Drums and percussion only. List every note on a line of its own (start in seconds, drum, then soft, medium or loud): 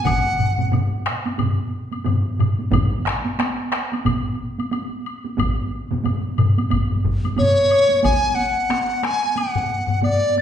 0.05 taiko medium
0.05 taiko low-mid medium
0.05 taiko mid medium
0.05 taiko high medium
0.05 high woodblock soft
0.39 taiko low-mid medium
0.39 taiko mid medium
0.58 taiko low-mid medium
0.58 taiko mid medium
0.58 taiko high soft
0.72 taiko low-mid medium
0.72 taiko mid medium
0.72 taiko high medium
0.72 high woodblock soft
1.06 taiko rim medium
1.06 high woodblock soft
1.25 taiko high soft
1.25 high woodblock soft
1.38 taiko low-mid medium
1.38 taiko mid medium
1.38 taiko high medium
1.38 high woodblock soft
1.92 taiko high medium
1.92 high woodblock soft
2.05 taiko low-mid medium
2.05 taiko mid loud
2.05 taiko high medium
2.05 high woodblock soft
2.39 taiko low-mid medium
2.39 taiko mid medium
2.39 high woodblock soft
2.59 taiko high medium
2.72 taiko loud
2.72 taiko low-mid loud
2.72 taiko mid medium
2.72 taiko high medium
2.72 high woodblock soft
3.06 taiko rim medium
3.24 taiko high soft
3.39 taiko rim medium
3.39 taiko high medium
3.39 high woodblock soft
3.72 taiko rim medium
3.72 high woodblock soft
3.92 taiko high soft
3.92 high woodblock soft
4.05 taiko medium
4.05 taiko low-mid medium
4.05 taiko mid medium
4.05 taiko high medium
4.05 high woodblock soft
4.58 taiko high medium
4.58 high woodblock soft
4.71 taiko high medium
4.71 high woodblock soft
5.06 high woodblock soft
5.24 taiko high soft
5.38 taiko medium
5.38 taiko low-mid loud
5.38 taiko mid loud
5.38 taiko high medium
5.38 high woodblock medium
5.91 taiko low-mid medium
5.91 taiko mid medium
5.91 taiko high soft
6.04 taiko low-mid medium
6.04 taiko mid medium
6.04 taiko high medium
6.04 high woodblock soft
6.38 taiko low-mid loud
6.38 taiko mid medium
6.38 high woodblock soft
6.58 taiko high medium
6.58 high woodblock soft
6.71 taiko medium
6.71 taiko low-mid medium
6.71 taiko mid medium
6.71 taiko high medium
6.71 high woodblock soft
6.91 taiko low-mid medium
6.91 taiko mid medium
7.04 taiko medium
7.04 taiko low-mid medium
7.04 taiko mid medium
7.24 taiko low-mid medium
7.24 taiko mid medium
7.24 taiko high medium
7.24 high woodblock soft
7.36 taiko low-mid medium
7.36 taiko mid loud
7.36 taiko high medium
7.36 high woodblock soft
7.71 high woodblock soft
7.90 taiko high medium
8.03 taiko loud
8.03 taiko high medium
8.03 high woodblock soft
8.23 taiko high soft
8.36 taiko high soft
8.57 taiko high soft
8.70 taiko rim medium
8.70 taiko high medium
8.70 high woodblock soft
9.03 taiko rim medium
9.03 taiko high soft
9.36 taiko high medium
9.36 high woodblock soft
9.55 taiko low-mid medium
9.55 taiko high soft
9.70 taiko high soft
9.88 taiko low-mid medium
9.88 taiko high soft
10.01 taiko low-mid medium
10.01 taiko high medium
10.01 high woodblock soft
10.22 taiko high soft
10.36 taiko high soft